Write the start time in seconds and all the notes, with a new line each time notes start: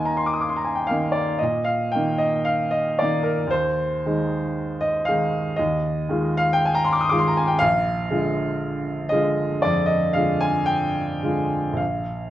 Already playing: D#2 D#3 A#3 D#4 G5 G#5
0.05 A#5
0.17 C6
0.26 D6
0.34 D#6
0.41 D6
0.49 C6
0.57 A#5
0.65 G#5
0.75 G5
0.87 D#3 A#3 D#4 F5
1.12 D5
1.39 A#2 D#5
1.64 F5
1.92 D#3 A#3 D#4 G5
2.18 D#5
2.45 F5
2.71 D#5
2.99 D#3 A#3 D#4 D5
3.23 A#4
3.47 D#2 C5
4.06 D#3 G#3 D#4
4.81 D#5
5.05 D#3 G#3 D#4 F5
5.57 D#2 D#5
6.09 D#3 G#3 F4
6.37 F5
6.53 G5
6.66 G#5
6.75 A#5
6.85 C6
6.93 D6
7.01 D#6
7.09 D#3 G#3 F4 D6
7.19 C6
7.28 A#5
7.37 G#5
7.48 G5
7.59 A#1 F5
8.10 D3 G#3 F4
9.09 D3 G#3 F4 D#5
9.62 F2 D5
9.86 D#5
10.13 D3 G#3 F4 F5
10.41 G#5
10.66 G5
11.23 D3 G#3 F4
11.73 A#1 F5